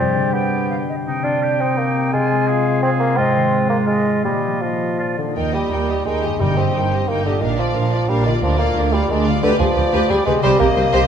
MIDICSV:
0, 0, Header, 1, 12, 480
1, 0, Start_track
1, 0, Tempo, 362100
1, 1413, Time_signature, 3, 2, 24, 8
1, 2358, Tempo, 349854
1, 5238, Tempo, 369004
1, 7638, Tempo, 336323
1, 15269, End_track
2, 0, Start_track
2, 0, Title_t, "Flute"
2, 0, Program_c, 0, 73
2, 0, Note_on_c, 0, 74, 41
2, 436, Note_off_c, 0, 74, 0
2, 444, Note_on_c, 0, 79, 45
2, 897, Note_off_c, 0, 79, 0
2, 926, Note_on_c, 0, 77, 47
2, 1006, Note_off_c, 0, 77, 0
2, 1178, Note_on_c, 0, 75, 39
2, 1257, Note_off_c, 0, 75, 0
2, 1417, Note_on_c, 0, 79, 38
2, 1856, Note_off_c, 0, 79, 0
2, 1891, Note_on_c, 0, 79, 40
2, 2836, Note_on_c, 0, 80, 45
2, 2857, Note_off_c, 0, 79, 0
2, 3335, Note_on_c, 0, 77, 48
2, 3356, Note_off_c, 0, 80, 0
2, 3787, Note_off_c, 0, 77, 0
2, 3795, Note_on_c, 0, 77, 54
2, 4261, Note_off_c, 0, 77, 0
2, 4273, Note_on_c, 0, 75, 55
2, 4831, Note_off_c, 0, 75, 0
2, 5252, Note_on_c, 0, 75, 46
2, 5716, Note_off_c, 0, 75, 0
2, 5723, Note_on_c, 0, 75, 35
2, 6207, Note_off_c, 0, 75, 0
2, 6217, Note_on_c, 0, 75, 35
2, 6698, Note_on_c, 0, 74, 31
2, 6718, Note_off_c, 0, 75, 0
2, 6943, Note_off_c, 0, 74, 0
2, 15269, End_track
3, 0, Start_track
3, 0, Title_t, "Violin section"
3, 0, Program_c, 1, 48
3, 7176, Note_on_c, 1, 79, 32
3, 7392, Note_off_c, 1, 79, 0
3, 7403, Note_on_c, 1, 75, 33
3, 7631, Note_on_c, 1, 79, 35
3, 7634, Note_off_c, 1, 75, 0
3, 7868, Note_on_c, 1, 75, 31
3, 7881, Note_off_c, 1, 79, 0
3, 8120, Note_off_c, 1, 75, 0
3, 8126, Note_on_c, 1, 79, 32
3, 8353, Note_off_c, 1, 79, 0
3, 8367, Note_on_c, 1, 75, 30
3, 8615, Note_off_c, 1, 75, 0
3, 8622, Note_on_c, 1, 79, 35
3, 8850, Note_off_c, 1, 79, 0
3, 8874, Note_on_c, 1, 75, 34
3, 9115, Note_off_c, 1, 75, 0
3, 9115, Note_on_c, 1, 79, 35
3, 9355, Note_off_c, 1, 79, 0
3, 9358, Note_on_c, 1, 75, 34
3, 9590, Note_on_c, 1, 79, 31
3, 9596, Note_off_c, 1, 75, 0
3, 9812, Note_off_c, 1, 79, 0
3, 9827, Note_on_c, 1, 75, 32
3, 10067, Note_off_c, 1, 75, 0
3, 10068, Note_on_c, 1, 77, 35
3, 10291, Note_off_c, 1, 77, 0
3, 10308, Note_on_c, 1, 74, 35
3, 10548, Note_off_c, 1, 74, 0
3, 10555, Note_on_c, 1, 77, 38
3, 10785, Note_on_c, 1, 74, 38
3, 10791, Note_off_c, 1, 77, 0
3, 11027, Note_off_c, 1, 74, 0
3, 11034, Note_on_c, 1, 77, 36
3, 11255, Note_off_c, 1, 77, 0
3, 11265, Note_on_c, 1, 74, 38
3, 11495, Note_off_c, 1, 74, 0
3, 11513, Note_on_c, 1, 74, 40
3, 11733, Note_off_c, 1, 74, 0
3, 11745, Note_on_c, 1, 77, 43
3, 11984, Note_off_c, 1, 77, 0
3, 11993, Note_on_c, 1, 74, 44
3, 12216, Note_on_c, 1, 77, 42
3, 12227, Note_off_c, 1, 74, 0
3, 12457, Note_on_c, 1, 74, 42
3, 12459, Note_off_c, 1, 77, 0
3, 12681, Note_off_c, 1, 74, 0
3, 12697, Note_on_c, 1, 77, 45
3, 12931, Note_on_c, 1, 74, 50
3, 12934, Note_off_c, 1, 77, 0
3, 14307, Note_off_c, 1, 74, 0
3, 14367, Note_on_c, 1, 75, 60
3, 15269, Note_off_c, 1, 75, 0
3, 15269, End_track
4, 0, Start_track
4, 0, Title_t, "Violin section"
4, 0, Program_c, 2, 48
4, 7184, Note_on_c, 2, 70, 34
4, 7397, Note_off_c, 2, 70, 0
4, 7414, Note_on_c, 2, 67, 30
4, 7627, Note_on_c, 2, 70, 32
4, 7640, Note_off_c, 2, 67, 0
4, 7865, Note_on_c, 2, 67, 31
4, 7878, Note_off_c, 2, 70, 0
4, 8118, Note_off_c, 2, 67, 0
4, 8120, Note_on_c, 2, 70, 33
4, 8349, Note_off_c, 2, 70, 0
4, 8362, Note_on_c, 2, 67, 30
4, 8607, Note_on_c, 2, 70, 34
4, 8612, Note_off_c, 2, 67, 0
4, 8843, Note_off_c, 2, 70, 0
4, 8858, Note_on_c, 2, 67, 31
4, 9107, Note_off_c, 2, 67, 0
4, 9109, Note_on_c, 2, 70, 33
4, 9352, Note_off_c, 2, 70, 0
4, 9355, Note_on_c, 2, 67, 32
4, 9593, Note_on_c, 2, 70, 33
4, 9594, Note_off_c, 2, 67, 0
4, 9814, Note_off_c, 2, 70, 0
4, 9831, Note_on_c, 2, 67, 33
4, 10069, Note_off_c, 2, 67, 0
4, 10075, Note_on_c, 2, 70, 37
4, 10295, Note_off_c, 2, 70, 0
4, 10310, Note_on_c, 2, 74, 34
4, 10543, Note_on_c, 2, 70, 36
4, 10549, Note_off_c, 2, 74, 0
4, 10785, Note_off_c, 2, 70, 0
4, 10786, Note_on_c, 2, 74, 34
4, 11020, Note_on_c, 2, 70, 38
4, 11027, Note_off_c, 2, 74, 0
4, 11248, Note_off_c, 2, 70, 0
4, 11259, Note_on_c, 2, 74, 37
4, 11498, Note_on_c, 2, 70, 40
4, 11504, Note_off_c, 2, 74, 0
4, 11725, Note_off_c, 2, 70, 0
4, 11743, Note_on_c, 2, 74, 39
4, 11981, Note_on_c, 2, 70, 41
4, 11983, Note_off_c, 2, 74, 0
4, 12220, Note_on_c, 2, 74, 38
4, 12221, Note_off_c, 2, 70, 0
4, 12453, Note_on_c, 2, 70, 43
4, 12461, Note_off_c, 2, 74, 0
4, 12679, Note_off_c, 2, 70, 0
4, 12690, Note_on_c, 2, 74, 43
4, 12929, Note_on_c, 2, 71, 58
4, 12931, Note_off_c, 2, 74, 0
4, 13150, Note_off_c, 2, 71, 0
4, 13159, Note_on_c, 2, 68, 39
4, 13256, Note_off_c, 2, 68, 0
4, 13391, Note_on_c, 2, 71, 48
4, 13490, Note_off_c, 2, 71, 0
4, 13645, Note_on_c, 2, 71, 59
4, 13868, Note_off_c, 2, 71, 0
4, 13891, Note_on_c, 2, 68, 50
4, 13986, Note_off_c, 2, 68, 0
4, 14124, Note_on_c, 2, 71, 56
4, 14221, Note_off_c, 2, 71, 0
4, 14362, Note_on_c, 2, 72, 62
4, 14585, Note_off_c, 2, 72, 0
4, 14593, Note_on_c, 2, 70, 50
4, 14690, Note_off_c, 2, 70, 0
4, 14833, Note_on_c, 2, 72, 52
4, 14929, Note_off_c, 2, 72, 0
4, 15063, Note_on_c, 2, 72, 71
4, 15269, Note_off_c, 2, 72, 0
4, 15269, End_track
5, 0, Start_track
5, 0, Title_t, "Harp"
5, 0, Program_c, 3, 46
5, 0, Note_on_c, 3, 43, 38
5, 198, Note_on_c, 3, 50, 32
5, 450, Note_on_c, 3, 67, 30
5, 700, Note_on_c, 3, 74, 33
5, 939, Note_on_c, 3, 79, 37
5, 1159, Note_off_c, 3, 67, 0
5, 1174, Note_on_c, 3, 67, 34
5, 1417, Note_on_c, 3, 48, 38
5, 1430, Note_off_c, 3, 50, 0
5, 1434, Note_off_c, 3, 43, 0
5, 1437, Note_off_c, 3, 74, 0
5, 1648, Note_on_c, 3, 60, 32
5, 1870, Note_off_c, 3, 67, 0
5, 1886, Note_on_c, 3, 67, 34
5, 2123, Note_on_c, 3, 75, 34
5, 2348, Note_off_c, 3, 79, 0
5, 2364, Note_on_c, 3, 79, 38
5, 2591, Note_off_c, 3, 67, 0
5, 2608, Note_on_c, 3, 67, 41
5, 2827, Note_off_c, 3, 48, 0
5, 2844, Note_on_c, 3, 48, 44
5, 2862, Note_off_c, 3, 75, 0
5, 2864, Note_off_c, 3, 67, 0
5, 2864, Note_off_c, 3, 79, 0
5, 3095, Note_on_c, 3, 56, 38
5, 3333, Note_on_c, 3, 65, 42
5, 3575, Note_on_c, 3, 72, 45
5, 3816, Note_on_c, 3, 77, 52
5, 4038, Note_off_c, 3, 72, 0
5, 4054, Note_on_c, 3, 72, 48
5, 4283, Note_on_c, 3, 44, 54
5, 4293, Note_off_c, 3, 48, 0
5, 4521, Note_on_c, 3, 51, 43
5, 4737, Note_off_c, 3, 65, 0
5, 4753, Note_on_c, 3, 65, 40
5, 4982, Note_off_c, 3, 72, 0
5, 4999, Note_on_c, 3, 72, 44
5, 5230, Note_off_c, 3, 77, 0
5, 5246, Note_on_c, 3, 77, 45
5, 5472, Note_off_c, 3, 72, 0
5, 5487, Note_on_c, 3, 72, 36
5, 5727, Note_on_c, 3, 46, 36
5, 5744, Note_off_c, 3, 60, 0
5, 5749, Note_off_c, 3, 51, 0
5, 5750, Note_off_c, 3, 44, 0
5, 5750, Note_off_c, 3, 72, 0
5, 5751, Note_off_c, 3, 56, 0
5, 5980, Note_on_c, 3, 53, 29
5, 6204, Note_off_c, 3, 65, 0
5, 6219, Note_on_c, 3, 65, 27
5, 6455, Note_on_c, 3, 70, 28
5, 6678, Note_off_c, 3, 46, 0
5, 6694, Note_on_c, 3, 46, 32
5, 6913, Note_on_c, 3, 51, 30
5, 6930, Note_off_c, 3, 65, 0
5, 6945, Note_on_c, 3, 65, 26
5, 6983, Note_on_c, 3, 74, 28
5, 7006, Note_on_c, 3, 58, 26
5, 7064, Note_on_c, 3, 63, 25
5, 7120, Note_on_c, 3, 75, 24
5, 7197, Note_off_c, 3, 46, 0
5, 7201, Note_off_c, 3, 65, 0
5, 7203, Note_off_c, 3, 53, 0
5, 7203, Note_off_c, 3, 74, 0
5, 7204, Note_off_c, 3, 77, 0
5, 8366, Note_on_c, 3, 43, 32
5, 8412, Note_off_c, 3, 58, 0
5, 8429, Note_on_c, 3, 58, 27
5, 8477, Note_off_c, 3, 63, 0
5, 8494, Note_on_c, 3, 63, 25
5, 8508, Note_off_c, 3, 51, 0
5, 8540, Note_off_c, 3, 75, 0
5, 8557, Note_on_c, 3, 75, 25
5, 9816, Note_on_c, 3, 46, 34
5, 9861, Note_off_c, 3, 58, 0
5, 9879, Note_on_c, 3, 58, 28
5, 9944, Note_on_c, 3, 65, 29
5, 9963, Note_off_c, 3, 43, 0
5, 10008, Note_on_c, 3, 74, 28
5, 10027, Note_off_c, 3, 63, 0
5, 10058, Note_off_c, 3, 75, 0
5, 11259, Note_on_c, 3, 50, 38
5, 11304, Note_off_c, 3, 58, 0
5, 11321, Note_on_c, 3, 58, 30
5, 11370, Note_off_c, 3, 65, 0
5, 11387, Note_on_c, 3, 65, 31
5, 11402, Note_off_c, 3, 46, 0
5, 11448, Note_on_c, 3, 77, 31
5, 11526, Note_off_c, 3, 70, 0
5, 12676, Note_off_c, 3, 50, 0
5, 12693, Note_on_c, 3, 50, 42
5, 12754, Note_on_c, 3, 59, 36
5, 12821, Note_on_c, 3, 67, 35
5, 12860, Note_off_c, 3, 58, 0
5, 12867, Note_off_c, 3, 74, 0
5, 12884, Note_on_c, 3, 74, 35
5, 14113, Note_on_c, 3, 48, 49
5, 14181, Note_on_c, 3, 60, 41
5, 14227, Note_off_c, 3, 67, 0
5, 14244, Note_on_c, 3, 67, 43
5, 14265, Note_off_c, 3, 50, 0
5, 14295, Note_off_c, 3, 59, 0
5, 14306, Note_on_c, 3, 75, 42
5, 14325, Note_off_c, 3, 65, 0
5, 14355, Note_off_c, 3, 77, 0
5, 14360, Note_off_c, 3, 74, 0
5, 15269, Note_off_c, 3, 48, 0
5, 15269, Note_off_c, 3, 60, 0
5, 15269, Note_off_c, 3, 67, 0
5, 15269, Note_off_c, 3, 75, 0
5, 15269, End_track
6, 0, Start_track
6, 0, Title_t, "Oboe"
6, 0, Program_c, 4, 68
6, 0, Note_on_c, 4, 67, 39
6, 440, Note_off_c, 4, 67, 0
6, 448, Note_on_c, 4, 67, 44
6, 1159, Note_off_c, 4, 67, 0
6, 1416, Note_on_c, 4, 63, 42
6, 1644, Note_on_c, 4, 65, 43
6, 1664, Note_off_c, 4, 63, 0
6, 1888, Note_on_c, 4, 67, 45
6, 1908, Note_off_c, 4, 65, 0
6, 2128, Note_on_c, 4, 63, 40
6, 2148, Note_off_c, 4, 67, 0
6, 2831, Note_off_c, 4, 63, 0
6, 2840, Note_on_c, 4, 65, 45
6, 3307, Note_on_c, 4, 68, 54
6, 3328, Note_off_c, 4, 65, 0
6, 3787, Note_off_c, 4, 68, 0
6, 3795, Note_on_c, 4, 68, 55
6, 4261, Note_off_c, 4, 68, 0
6, 4270, Note_on_c, 4, 65, 57
6, 5182, Note_off_c, 4, 65, 0
6, 5232, Note_on_c, 4, 65, 46
6, 5709, Note_off_c, 4, 65, 0
6, 5717, Note_on_c, 4, 65, 37
6, 6201, Note_off_c, 4, 65, 0
6, 6209, Note_on_c, 4, 65, 36
6, 6679, Note_off_c, 4, 65, 0
6, 6687, Note_on_c, 4, 65, 33
6, 6932, Note_off_c, 4, 65, 0
6, 15269, End_track
7, 0, Start_track
7, 0, Title_t, "Viola section"
7, 0, Program_c, 5, 48
7, 7174, Note_on_c, 5, 63, 35
7, 7391, Note_off_c, 5, 63, 0
7, 7403, Note_on_c, 5, 67, 32
7, 7628, Note_on_c, 5, 63, 32
7, 7634, Note_off_c, 5, 67, 0
7, 7869, Note_on_c, 5, 67, 31
7, 7879, Note_off_c, 5, 63, 0
7, 8116, Note_on_c, 5, 63, 33
7, 8120, Note_off_c, 5, 67, 0
7, 8347, Note_off_c, 5, 63, 0
7, 8360, Note_on_c, 5, 67, 30
7, 8607, Note_on_c, 5, 63, 34
7, 8611, Note_off_c, 5, 67, 0
7, 8842, Note_off_c, 5, 63, 0
7, 8860, Note_on_c, 5, 67, 30
7, 9105, Note_on_c, 5, 63, 34
7, 9108, Note_off_c, 5, 67, 0
7, 9349, Note_on_c, 5, 67, 30
7, 9350, Note_off_c, 5, 63, 0
7, 9588, Note_on_c, 5, 63, 34
7, 9591, Note_off_c, 5, 67, 0
7, 9812, Note_off_c, 5, 63, 0
7, 9838, Note_on_c, 5, 67, 32
7, 10061, Note_on_c, 5, 62, 36
7, 10072, Note_off_c, 5, 67, 0
7, 10288, Note_off_c, 5, 62, 0
7, 10298, Note_on_c, 5, 65, 34
7, 10543, Note_off_c, 5, 65, 0
7, 10563, Note_on_c, 5, 62, 35
7, 10789, Note_on_c, 5, 65, 34
7, 10795, Note_off_c, 5, 62, 0
7, 11029, Note_off_c, 5, 65, 0
7, 11034, Note_on_c, 5, 62, 37
7, 11255, Note_off_c, 5, 62, 0
7, 11277, Note_on_c, 5, 65, 36
7, 11513, Note_off_c, 5, 65, 0
7, 11521, Note_on_c, 5, 62, 43
7, 11737, Note_off_c, 5, 62, 0
7, 11751, Note_on_c, 5, 65, 38
7, 11973, Note_on_c, 5, 62, 38
7, 11987, Note_off_c, 5, 65, 0
7, 12216, Note_on_c, 5, 65, 38
7, 12218, Note_off_c, 5, 62, 0
7, 12459, Note_off_c, 5, 65, 0
7, 12469, Note_on_c, 5, 62, 42
7, 12687, Note_off_c, 5, 62, 0
7, 12708, Note_on_c, 5, 65, 43
7, 12940, Note_off_c, 5, 65, 0
7, 12943, Note_on_c, 5, 67, 59
7, 13157, Note_off_c, 5, 67, 0
7, 13177, Note_on_c, 5, 67, 41
7, 13270, Note_off_c, 5, 67, 0
7, 13414, Note_on_c, 5, 67, 43
7, 13508, Note_off_c, 5, 67, 0
7, 13637, Note_on_c, 5, 67, 60
7, 13865, Note_off_c, 5, 67, 0
7, 13883, Note_on_c, 5, 67, 48
7, 13980, Note_off_c, 5, 67, 0
7, 14118, Note_on_c, 5, 67, 51
7, 14216, Note_off_c, 5, 67, 0
7, 14361, Note_on_c, 5, 67, 66
7, 14584, Note_off_c, 5, 67, 0
7, 14600, Note_on_c, 5, 67, 49
7, 14695, Note_off_c, 5, 67, 0
7, 14848, Note_on_c, 5, 67, 45
7, 14941, Note_off_c, 5, 67, 0
7, 15074, Note_on_c, 5, 67, 68
7, 15269, Note_off_c, 5, 67, 0
7, 15269, End_track
8, 0, Start_track
8, 0, Title_t, "Clarinet"
8, 0, Program_c, 6, 71
8, 0, Note_on_c, 6, 55, 43
8, 1177, Note_off_c, 6, 55, 0
8, 1422, Note_on_c, 6, 60, 47
8, 4222, Note_off_c, 6, 60, 0
8, 4269, Note_on_c, 6, 56, 64
8, 5718, Note_on_c, 6, 58, 45
8, 5738, Note_off_c, 6, 56, 0
8, 6940, Note_off_c, 6, 58, 0
8, 15269, End_track
9, 0, Start_track
9, 0, Title_t, "Bassoon"
9, 0, Program_c, 7, 70
9, 0, Note_on_c, 7, 60, 63
9, 445, Note_on_c, 7, 59, 47
9, 465, Note_off_c, 7, 60, 0
9, 1172, Note_off_c, 7, 59, 0
9, 1640, Note_on_c, 7, 62, 59
9, 2123, Note_on_c, 7, 60, 53
9, 2143, Note_off_c, 7, 62, 0
9, 2358, Note_on_c, 7, 58, 61
9, 2378, Note_off_c, 7, 60, 0
9, 2833, Note_off_c, 7, 58, 0
9, 2841, Note_on_c, 7, 56, 72
9, 3780, Note_off_c, 7, 56, 0
9, 3795, Note_on_c, 7, 60, 77
9, 3903, Note_off_c, 7, 60, 0
9, 4029, Note_on_c, 7, 58, 81
9, 4266, Note_on_c, 7, 60, 88
9, 4286, Note_off_c, 7, 58, 0
9, 4980, Note_off_c, 7, 60, 0
9, 4989, Note_on_c, 7, 58, 67
9, 5100, Note_off_c, 7, 58, 0
9, 5227, Note_on_c, 7, 56, 60
9, 5710, Note_off_c, 7, 56, 0
9, 5717, Note_on_c, 7, 55, 53
9, 6202, Note_on_c, 7, 53, 41
9, 6222, Note_off_c, 7, 55, 0
9, 6926, Note_off_c, 7, 53, 0
9, 6934, Note_on_c, 7, 50, 43
9, 7160, Note_off_c, 7, 50, 0
9, 7171, Note_on_c, 7, 51, 49
9, 7398, Note_on_c, 7, 55, 49
9, 7417, Note_off_c, 7, 51, 0
9, 8106, Note_off_c, 7, 55, 0
9, 8115, Note_on_c, 7, 56, 49
9, 8611, Note_on_c, 7, 55, 52
9, 8633, Note_off_c, 7, 56, 0
9, 8843, Note_off_c, 7, 55, 0
9, 8852, Note_on_c, 7, 60, 54
9, 9577, Note_on_c, 7, 58, 49
9, 9599, Note_off_c, 7, 60, 0
9, 9812, Note_off_c, 7, 58, 0
9, 9820, Note_on_c, 7, 50, 50
9, 10052, Note_on_c, 7, 51, 48
9, 10074, Note_off_c, 7, 50, 0
9, 10293, Note_off_c, 7, 51, 0
9, 10301, Note_on_c, 7, 53, 53
9, 11019, Note_on_c, 7, 55, 58
9, 11040, Note_off_c, 7, 53, 0
9, 11251, Note_off_c, 7, 55, 0
9, 11259, Note_on_c, 7, 51, 59
9, 11370, Note_off_c, 7, 51, 0
9, 11501, Note_on_c, 7, 53, 64
9, 11721, Note_off_c, 7, 53, 0
9, 11729, Note_on_c, 7, 58, 61
9, 12217, Note_on_c, 7, 55, 57
9, 12238, Note_off_c, 7, 58, 0
9, 12461, Note_on_c, 7, 56, 60
9, 12483, Note_off_c, 7, 55, 0
9, 12700, Note_off_c, 7, 56, 0
9, 12930, Note_on_c, 7, 50, 71
9, 13037, Note_off_c, 7, 50, 0
9, 13163, Note_on_c, 7, 53, 74
9, 13880, Note_on_c, 7, 55, 72
9, 13901, Note_off_c, 7, 53, 0
9, 14103, Note_off_c, 7, 55, 0
9, 14111, Note_on_c, 7, 56, 79
9, 14347, Note_off_c, 7, 56, 0
9, 14355, Note_on_c, 7, 55, 86
9, 14584, Note_off_c, 7, 55, 0
9, 14593, Note_on_c, 7, 58, 85
9, 15269, Note_off_c, 7, 58, 0
9, 15269, End_track
10, 0, Start_track
10, 0, Title_t, "Timpani"
10, 0, Program_c, 8, 47
10, 8615, Note_on_c, 8, 43, 45
10, 9301, Note_off_c, 8, 43, 0
10, 15269, End_track
11, 0, Start_track
11, 0, Title_t, "Cello section"
11, 0, Program_c, 10, 48
11, 7170, Note_on_c, 10, 39, 39
11, 7579, Note_off_c, 10, 39, 0
11, 7630, Note_on_c, 10, 39, 37
11, 8066, Note_off_c, 10, 39, 0
11, 8129, Note_on_c, 10, 39, 38
11, 8558, Note_off_c, 10, 39, 0
11, 8608, Note_on_c, 10, 43, 42
11, 9049, Note_off_c, 10, 43, 0
11, 9103, Note_on_c, 10, 43, 39
11, 9532, Note_off_c, 10, 43, 0
11, 9591, Note_on_c, 10, 43, 42
11, 10012, Note_off_c, 10, 43, 0
11, 10064, Note_on_c, 10, 46, 43
11, 10490, Note_off_c, 10, 46, 0
11, 10541, Note_on_c, 10, 46, 42
11, 10967, Note_off_c, 10, 46, 0
11, 11024, Note_on_c, 10, 46, 46
11, 11450, Note_off_c, 10, 46, 0
11, 11513, Note_on_c, 10, 38, 50
11, 11931, Note_off_c, 10, 38, 0
11, 11979, Note_on_c, 10, 38, 49
11, 12403, Note_off_c, 10, 38, 0
11, 12458, Note_on_c, 10, 38, 50
11, 12878, Note_off_c, 10, 38, 0
11, 12927, Note_on_c, 10, 38, 64
11, 13023, Note_off_c, 10, 38, 0
11, 13169, Note_on_c, 10, 38, 45
11, 13264, Note_off_c, 10, 38, 0
11, 13407, Note_on_c, 10, 38, 45
11, 13503, Note_off_c, 10, 38, 0
11, 13643, Note_on_c, 10, 38, 65
11, 13740, Note_off_c, 10, 38, 0
11, 13879, Note_on_c, 10, 38, 49
11, 13977, Note_off_c, 10, 38, 0
11, 14119, Note_on_c, 10, 38, 46
11, 14216, Note_off_c, 10, 38, 0
11, 14357, Note_on_c, 10, 36, 67
11, 14454, Note_off_c, 10, 36, 0
11, 14599, Note_on_c, 10, 36, 51
11, 14694, Note_off_c, 10, 36, 0
11, 14830, Note_on_c, 10, 36, 49
11, 14927, Note_off_c, 10, 36, 0
11, 15076, Note_on_c, 10, 36, 69
11, 15172, Note_off_c, 10, 36, 0
11, 15269, End_track
12, 0, Start_track
12, 0, Title_t, "Double bass section"
12, 0, Program_c, 11, 48
12, 7184, Note_on_c, 11, 39, 41
12, 7586, Note_off_c, 11, 39, 0
12, 7637, Note_on_c, 11, 39, 38
12, 8070, Note_off_c, 11, 39, 0
12, 8124, Note_on_c, 11, 39, 38
12, 8556, Note_off_c, 11, 39, 0
12, 8620, Note_on_c, 11, 31, 40
12, 9055, Note_off_c, 11, 31, 0
12, 9101, Note_on_c, 11, 31, 41
12, 9532, Note_off_c, 11, 31, 0
12, 9581, Note_on_c, 11, 31, 39
12, 10007, Note_off_c, 11, 31, 0
12, 10073, Note_on_c, 11, 34, 43
12, 10494, Note_off_c, 11, 34, 0
12, 10545, Note_on_c, 11, 34, 42
12, 10969, Note_off_c, 11, 34, 0
12, 11031, Note_on_c, 11, 34, 44
12, 11454, Note_off_c, 11, 34, 0
12, 11508, Note_on_c, 11, 38, 52
12, 11929, Note_off_c, 11, 38, 0
12, 11982, Note_on_c, 11, 38, 48
12, 12405, Note_off_c, 11, 38, 0
12, 12459, Note_on_c, 11, 38, 51
12, 12878, Note_off_c, 11, 38, 0
12, 12930, Note_on_c, 11, 38, 62
12, 13025, Note_off_c, 11, 38, 0
12, 13169, Note_on_c, 11, 38, 47
12, 13264, Note_off_c, 11, 38, 0
12, 13406, Note_on_c, 11, 38, 41
12, 13502, Note_off_c, 11, 38, 0
12, 13644, Note_on_c, 11, 38, 61
12, 13740, Note_off_c, 11, 38, 0
12, 13889, Note_on_c, 11, 38, 45
12, 13985, Note_off_c, 11, 38, 0
12, 14135, Note_on_c, 11, 38, 47
12, 14229, Note_off_c, 11, 38, 0
12, 14367, Note_on_c, 11, 36, 69
12, 14462, Note_off_c, 11, 36, 0
12, 14603, Note_on_c, 11, 36, 50
12, 14698, Note_off_c, 11, 36, 0
12, 14847, Note_on_c, 11, 36, 48
12, 14940, Note_off_c, 11, 36, 0
12, 15077, Note_on_c, 11, 36, 67
12, 15173, Note_off_c, 11, 36, 0
12, 15269, End_track
0, 0, End_of_file